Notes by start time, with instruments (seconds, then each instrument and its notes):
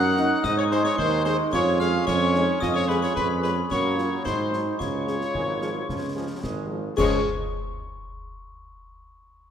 Already playing: tuba F#2, trombone section F#3 D#4, woodwind section F#5, cornet F#5, glockenspiel F#6, piccolo F#6
0.17 french horn section A#3 D#4, euphonium D#4, snare
0.43 tuba G#2, trombone section G#3, woodwind section D#5, cornet D#5, glockenspiel D#6, piccolo D#6, concert bass drum, snare, crash
0.57 woodwind section C#5, cornet C#5, glockenspiel C#6, piccolo C#6
0.71 french horn section G#3 D#4 G#4, woodwind section C5, cornet C5, piccolo C6, glockenspiel C6, snare
0.82 woodwind section C#5, cornet C#5, glockenspiel C#6, piccolo C#6, snare
0.98 tuba D#2, euphonium D#4, woodwind section C5, cornet C5, piccolo C6, glockenspiel C6, concert bass drum
1.25 french horn section G#3 D#4 G#4, cornet C5, woodwind section C5, glockenspiel C6, piccolo C6, snare
1.52 tuba F2, trombone section C#4, euphonium F4, woodwind section C#5, cornet C#5, glockenspiel C#6, piccolo C#6, concert bass drum, snare
1.79 french horn section G#3 C#4 G#4, cornet F5, woodwind section F5, glockenspiel F6, piccolo F6, snare
2.07 tuba F2, euphonium C#4, cornet C#5, woodwind section C#5, glockenspiel C#6, piccolo C#6, concert bass drum, snare
2.33 french horn section G#3 C#4 G#4, euphonium D#4, snare
2.60 tuba F2, trombone section G#3, euphonium F4, woodwind section D#5, cornet D#5, glockenspiel D#6, piccolo D#6, concert bass drum, snare, crash
2.74 woodwind section C#5, cornet C#5, glockenspiel C#6, piccolo C#6
2.88 french horn section G#3 C#4 G#4, woodwind section B4, cornet B4, glockenspiel B5, piccolo B5, snare
3.02 cornet C#5, woodwind section C#5, glockenspiel C#6, piccolo C#6, snare
3.15 tuba F2, euphonium G#4, cornet B4, woodwind section B4, piccolo B5, glockenspiel B5, concert bass drum
3.43 french horn section G#3 C#4 G#4, cornet B4, woodwind section B4, glockenspiel B5, piccolo B5, snare
3.70 tuba F#2, trombone section F#3 A#3, euphonium F#4, cornet C#5, woodwind section C#5, glockenspiel C#6, piccolo C#6, concert bass drum, snare
3.97 french horn section F#3 C#4 A#4, euphonium F4, snare
4.24 tuba G#2, trombone section G#3, euphonium D#4, cornet C5, woodwind section C5, glockenspiel C6, piccolo C6, concert bass drum, snare
4.51 french horn section F#3 G#3 G#4, euphonium D#4, snare
4.79 tuba C#2, trombone section G#3, euphonium F4, cornet C#5, woodwind section C#5, glockenspiel C#6, piccolo C#6, concert bass drum, snare, crash
5.07 french horn section F3 G#3 G#4, snare
5.21 snare
5.33 tuba G#1, trombone section G#3, concert bass drum
5.46 trombone section F#3
5.61 trombone section F3, french horn section F3 G#3 G#4, snare
5.75 trombone section F#3
5.88 tuba C#2, trombone section F3, concert bass drum, snare
6.15 trombone section F3, french horn section F3 G#3 G#4
6.42 tuba G#1, trombone section G#3, concert bass drum, snare
6.69 french horn section F3 G#3 G#4, trombone section F3
6.96 tuba C#2, trombone section F3 G#3, french horn section F3 G#3 G#4, woodwind section G#4, cornet C#5, glockenspiel C#6, piccolo C#6, concert bass drum, snare, crash